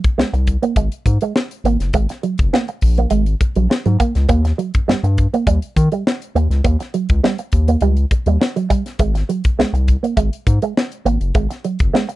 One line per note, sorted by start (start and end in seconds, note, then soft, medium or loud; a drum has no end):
0.04 0.10 C2 soft
0.04 kick loud
0.04 closed hi-hat soft
0.18 0.24 C2 medium
0.18 0.30 G#3 medium
0.18 snare loud
0.33 0.57 C2 medium
0.33 muted clean electric guitar stroke soft
0.33 closed hi-hat soft
0.47 kick medium
0.47 closed hi-hat medium
0.62 0.73 A#3 medium
0.62 closed hi-hat medium
0.76 0.89 G#1 loud
0.76 0.88 G#3 medium
0.76 kick medium
0.76 closed hi-hat medium
0.92 closed hi-hat medium
1.06 1.18 G#2 loud
1.06 muted clean electric guitar stroke soft
1.06 kick medium
1.06 closed hi-hat medium
1.21 1.32 G#3 medium
1.21 closed hi-hat medium
1.36 snare loud
1.51 closed hi-hat medium
1.64 1.77 G#1 loud
1.64 1.77 A#3 medium
1.64 closed hi-hat medium
1.80 1.91 F#1 medium
1.80 snare soft
1.80 closed hi-hat medium
1.93 2.07 G#1 medium
1.93 2.06 G#3 medium
1.93 kick loud
1.93 closed hi-hat medium
2.09 muted clean electric guitar stroke soft
2.09 snare soft
2.09 closed hi-hat medium
2.23 2.35 F#3 medium
2.23 closed hi-hat medium
2.38 2.50 F#1 medium
2.38 kick loud
2.38 closed hi-hat soft
2.53 2.65 A#3 medium
2.53 snare loud
2.68 muted clean electric guitar stroke soft
2.68 closed hi-hat soft
2.81 3.06 A#1 loud
2.81 kick medium
2.81 open hi-hat medium
2.97 3.08 A#3 medium
2.97 closed hi-hat medium
3.10 3.35 G#1 loud
3.10 3.23 G#3 medium
3.10 closed hi-hat medium
3.26 closed hi-hat medium
3.41 muted clean electric guitar stroke soft
3.41 kick medium
3.41 closed hi-hat medium
3.56 3.68 A#1 medium
3.56 3.67 F#3 medium
3.56 closed hi-hat soft
3.70 muted clean electric guitar stroke soft
3.70 snare loud
3.86 3.97 G#2 medium
3.86 3.96 F#3 medium
3.86 closed hi-hat medium
4.00 4.12 A#3 medium
4.00 kick medium
4.00 closed hi-hat medium
4.15 4.27 C#2 loud
4.15 snare soft
4.15 closed hi-hat medium
4.29 4.53 D#2 loud
4.29 4.41 A#3 medium
4.29 kick loud
4.29 closed hi-hat medium
4.45 muted clean electric guitar stroke soft
4.45 snare soft
4.45 closed hi-hat medium
4.58 4.70 F#3 medium
4.58 closed hi-hat medium
4.74 4.80 G2 medium
4.74 kick loud
4.74 closed hi-hat soft
4.88 4.95 G2 soft
4.88 5.00 G3 medium
4.88 snare loud
5.03 5.27 G2 medium
5.03 muted clean electric guitar stroke soft
5.03 closed hi-hat soft
5.18 kick medium
5.18 closed hi-hat medium
5.33 5.44 A#3 medium
5.33 closed hi-hat medium
5.47 5.59 D#2 loud
5.47 5.59 G3 medium
5.47 kick medium
5.47 closed hi-hat medium
5.62 closed hi-hat soft
5.76 5.89 D#3 loud
5.76 muted clean electric guitar stroke soft
5.76 kick medium
5.76 closed hi-hat medium
5.92 6.02 G3 medium
5.92 closed hi-hat soft
6.07 snare loud
6.22 closed hi-hat medium
6.35 6.48 D#2 medium
6.35 6.47 A#3 medium
6.35 closed hi-hat medium
6.50 6.61 C#2 medium
6.50 snare soft
6.50 closed hi-hat medium
6.64 6.77 D#2 loud
6.64 6.76 A#3 medium
6.64 kick loud
6.64 closed hi-hat medium
6.80 muted clean electric guitar stroke soft
6.80 snare soft
6.80 closed hi-hat medium
6.94 7.06 F#3 medium
6.94 closed hi-hat medium
7.09 7.21 C#2 medium
7.09 kick medium
7.09 closed hi-hat soft
7.24 7.35 G3 medium
7.24 snare loud
7.38 muted clean electric guitar stroke soft
7.38 closed hi-hat soft
7.52 7.76 D#2 medium
7.52 kick medium
7.52 closed hi-hat medium
7.68 7.79 A#3 medium
7.68 closed hi-hat medium
7.81 8.05 C#2 loud
7.81 7.94 G3 loud
7.81 closed hi-hat medium
7.97 closed hi-hat soft
8.11 muted clean electric guitar stroke soft
8.11 kick medium
8.11 closed hi-hat medium
8.26 8.38 D#2 medium
8.26 8.37 G3 medium
8.26 closed hi-hat soft
8.41 muted clean electric guitar stroke soft
8.41 snare loud
8.56 8.67 F#3 medium
8.56 closed hi-hat medium
8.70 8.82 G3 medium
8.70 kick medium
8.70 closed hi-hat medium
8.86 snare soft
8.86 closed hi-hat medium
8.99 9.23 G#1 loud
8.99 9.11 G#3 medium
8.99 kick loud
8.99 closed hi-hat medium
9.15 muted clean electric guitar stroke soft
9.15 snare soft
9.15 closed hi-hat medium
9.29 9.41 F#3 medium
9.29 closed hi-hat medium
9.44 9.50 C2 soft
9.44 kick loud
9.44 closed hi-hat medium
9.59 9.65 C2 medium
9.59 9.70 G#3 medium
9.59 snare loud
9.73 9.97 C2 medium
9.73 muted clean electric guitar stroke soft
9.73 closed hi-hat soft
9.88 kick medium
9.88 closed hi-hat medium
10.03 10.13 A#3 medium
10.03 closed hi-hat soft
10.17 10.29 G#1 loud
10.17 10.29 G#3 medium
10.17 kick medium
10.17 closed hi-hat medium
10.33 closed hi-hat medium
10.47 10.59 G#2 loud
10.47 muted clean electric guitar stroke soft
10.47 kick medium
10.47 closed hi-hat medium
10.62 10.73 G#3 medium
10.62 closed hi-hat soft
10.77 snare loud
10.92 closed hi-hat medium
11.05 11.18 G#1 medium
11.05 11.17 A#3 medium
11.05 closed hi-hat medium
11.21 11.32 F#1 medium
11.21 closed hi-hat medium
11.35 11.47 G#1 loud
11.35 11.46 G#3 medium
11.35 kick loud
11.35 closed hi-hat medium
11.50 muted clean electric guitar stroke soft
11.50 snare soft
11.50 closed hi-hat medium
11.64 11.76 F#3 medium
11.64 closed hi-hat medium
11.79 11.91 F#1 medium
11.79 kick loud
11.79 closed hi-hat medium
11.94 12.05 G#3 medium
11.94 snare loud
12.09 muted clean electric guitar stroke soft
12.09 closed hi-hat soft